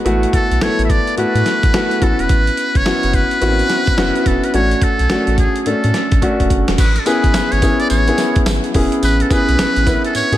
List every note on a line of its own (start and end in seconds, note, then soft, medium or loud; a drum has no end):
0.05 0.25 A1 loud
0.05 0.49 A3 medium
0.05 0.49 B3 medium
0.05 0.49 E4 medium
0.05 0.49 F#4 loud
0.05 closed hi-hat medium
0.23 closed hi-hat medium
0.33 0.64 A4 loud
0.33 kick medium
0.33 closed hi-hat medium
0.51 0.58 B1 medium
0.51 closed hi-hat soft
0.61 0.68 A1 soft
0.61 1.05 A3 medium
0.61 1.05 B3 medium
0.61 1.05 E4 medium
0.61 1.05 A4 medium
0.61 0.84 C#5 loud
0.61 snare loud
0.61 closed hi-hat medium
0.79 0.99 A1 medium
0.79 closed hi-hat medium
0.85 0.92 E5 medium
0.90 1.18 D5 loud
0.90 kick medium
0.90 closed hi-hat medium
1.07 closed hi-hat soft
1.17 1.24 A2 medium
1.17 1.61 A3 medium
1.17 1.61 B3 medium
1.17 1.61 E4 medium
1.17 1.62 F#4 medium
1.17 2.05 B4 loud
1.17 closed hi-hat medium
1.35 1.42 A2 loud
1.35 closed hi-hat medium
1.46 snare medium
1.46 closed hi-hat medium
1.63 1.71 A1 medium
1.63 kick loud
1.63 closed hi-hat medium
1.73 2.01 A3 medium
1.73 1.99 B3 medium
1.73 2.00 E4 medium
1.73 2.01 F#4 medium
1.73 snare loud
1.73 closed hi-hat medium
1.91 closed hi-hat soft
2.01 2.14 A1 loud
2.01 2.72 B3 medium
2.01 2.72 C#4 medium
2.01 2.72 E4 medium
2.01 2.72 F#4 medium
2.01 2.22 A4 medium
2.01 kick medium
2.01 closed hi-hat medium
2.19 2.27 E1 medium
2.19 2.78 B4 loud
2.19 closed hi-hat medium
2.29 2.50 A1 loud
2.29 kick loud
2.29 closed hi-hat medium
2.47 closed hi-hat medium
2.57 closed hi-hat medium
2.75 2.83 F#1 medium
2.75 3.16 C#5 loud
2.75 kick medium
2.75 closed hi-hat medium
2.85 2.93 F#1 soft
2.85 3.29 B3 medium
2.85 3.29 C#4 medium
2.85 3.30 E4 medium
2.85 3.30 F#4 medium
2.85 snare loud
2.85 closed hi-hat medium
3.03 3.24 F#1 loud
3.03 closed hi-hat medium
3.13 4.29 B4 loud
3.13 kick medium
3.13 closed hi-hat medium
3.31 closed hi-hat soft
3.41 3.62 A1 loud
3.41 3.85 B3 medium
3.41 3.50 C4 medium
3.41 3.85 E4 medium
3.41 3.86 F#4 medium
3.41 closed hi-hat medium
3.48 3.88 C#4 medium
3.59 closed hi-hat medium
3.70 snare medium
3.70 closed hi-hat medium
3.87 kick medium
3.87 closed hi-hat soft
3.97 4.11 F#1 medium
3.97 4.41 B3 loud
3.97 4.42 C#4 medium
3.97 4.42 E4 medium
3.97 4.42 F#4 loud
3.97 snare loud
3.97 closed hi-hat medium
4.16 closed hi-hat medium
4.26 4.39 E1 loud
4.26 4.46 A4 medium
4.26 kick medium
4.26 closed hi-hat medium
4.44 4.55 B4 medium
4.44 closed hi-hat medium
4.53 4.74 A1 loud
4.53 4.97 A3 medium
4.53 4.98 C#4 medium
4.53 4.98 D4 medium
4.53 4.98 F#4 medium
4.53 4.85 C#5 loud
4.53 closed hi-hat medium
4.71 closed hi-hat soft
4.82 5.38 A4 loud
4.82 kick medium
4.82 closed hi-hat medium
4.99 5.07 B1 medium
4.99 closed hi-hat medium
5.09 5.17 A1 soft
5.09 5.54 A3 medium
5.09 5.54 C#4 medium
5.09 5.54 D4 medium
5.09 5.54 F#4 medium
5.09 snare loud
5.09 closed hi-hat medium
5.27 5.47 A1 loud
5.27 closed hi-hat medium
5.38 5.61 G#4 medium
5.38 kick medium
5.38 closed hi-hat medium
5.56 closed hi-hat soft
5.61 5.68 G#4 medium
5.66 5.73 A2 medium
5.66 6.10 A3 medium
5.66 6.10 C#4 medium
5.66 6.10 D4 medium
5.66 6.51 A4 medium
5.66 6.10 A4 medium
5.66 closed hi-hat medium
5.84 5.91 A2 medium
5.84 closed hi-hat medium
5.94 snare medium
5.94 closed hi-hat medium
6.12 6.19 A1 medium
6.12 kick loud
6.12 closed hi-hat medium
6.21 6.66 A3 medium
6.21 6.66 C#4 medium
6.21 6.66 D4 medium
6.21 6.66 F#4 loud
6.21 kick medium
6.21 closed hi-hat medium
6.40 6.47 E1 medium
6.40 kick medium
6.40 closed hi-hat soft
6.50 6.63 F#1 loud
6.50 kick medium
6.50 closed hi-hat medium
6.68 6.76 E1 medium
6.68 snare medium
6.68 closed hi-hat medium
6.78 6.98 A1 loud
6.78 6.98 B4 medium
6.78 kick loud
6.78 closed hi-hat medium
6.78 crash loud
6.78 tambourine medium
6.96 7.08 A4 medium
6.96 closed hi-hat medium
7.06 7.50 B3 medium
7.06 7.50 C#4 medium
7.06 7.50 E4 medium
7.06 7.50 G#4 loud
7.06 7.53 B4 loud
7.06 closed hi-hat medium
7.06 tambourine medium
7.24 7.31 G#1 loud
7.24 kick medium
7.24 closed hi-hat medium
7.34 7.42 G#1 soft
7.34 snare loud
7.34 closed hi-hat medium
7.34 tambourine medium
7.52 7.72 G#1 loud
7.52 7.81 C#5 loud
7.52 closed hi-hat medium
7.62 7.93 B3 medium
7.62 7.93 C#4 medium
7.62 7.93 E4 medium
7.62 7.94 G#4 medium
7.62 kick medium
7.62 closed hi-hat medium
7.62 tambourine medium
7.80 7.89 D5 loud
7.80 closed hi-hat soft
7.90 8.11 A1 loud
7.90 8.42 C#5 loud
7.90 closed hi-hat medium
7.90 tambourine medium
8.08 8.57 B3 medium
8.08 8.57 C#4 medium
8.08 8.58 E4 medium
8.08 8.58 G#4 medium
8.08 closed hi-hat medium
8.18 snare medium
8.18 closed hi-hat medium
8.18 tambourine medium
8.36 kick loud
8.36 closed hi-hat medium
8.46 8.59 G#1 loud
8.46 snare loud
8.46 closed hi-hat medium
8.46 tambourine loud
8.64 closed hi-hat soft
8.74 8.87 E1 medium
8.74 9.18 B3 medium
8.74 9.18 C#4 medium
8.74 9.19 E4 medium
8.74 9.19 G#4 medium
8.74 kick medium
8.74 open hi-hat medium
8.92 closed hi-hat medium
9.03 9.23 A1 loud
9.03 9.23 B4 loud
9.03 closed hi-hat medium
9.03 tambourine medium
9.20 9.34 A4 medium
9.20 closed hi-hat medium
9.30 9.74 B3 medium
9.30 9.74 C#4 medium
9.30 9.74 E4 medium
9.30 9.75 G#4 loud
9.30 10.05 B4 loud
9.30 kick loud
9.30 closed hi-hat medium
9.30 tambourine medium
9.49 9.56 B1 medium
9.49 closed hi-hat medium
9.59 9.66 A1 soft
9.59 snare loud
9.59 closed hi-hat medium
9.59 tambourine medium
9.76 9.96 A1 loud
9.76 closed hi-hat medium
9.86 10.18 B3 medium
9.86 10.18 C#4 medium
9.86 10.18 E4 medium
9.86 10.18 B4 medium
9.86 kick medium
9.86 closed hi-hat medium
9.86 tambourine medium
10.04 10.14 A4 medium
10.04 closed hi-hat medium
10.15 10.22 A2 medium
10.15 10.38 C#5 loud
10.15 closed hi-hat medium
10.15 tambourine medium
10.32 10.38 A2 loud
10.32 10.38 B3 medium
10.32 10.38 C#4 medium
10.32 10.38 E4 medium
10.32 10.38 G#4 medium
10.32 closed hi-hat medium